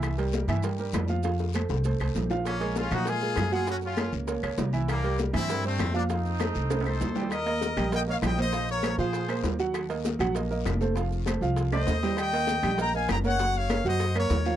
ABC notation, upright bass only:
X:1
M:4/4
L:1/8
Q:1/4=198
K:Ebdor
V:1 name="Upright bass" clef=bass
C,,3 =G,,3 F,,2- | F,,3 C,,2 C,, B,,,2- | B,,,3 B,,3 G,,2- | G,,3 D,,2 D,, C,,2- |
C,,3 =G,,3 F,,2- | F,,3 C,,3 E,,2- | E,,3 B,,,3 B,,,2- | B,,,3 B,,3 E,,2- |
E,,3 B,,,3 F,,,2- | F,,,3 C,,3 E,,2- | E,,3 B,,,3 G,,,2- | G,,,3 G,,3 E,,2 |]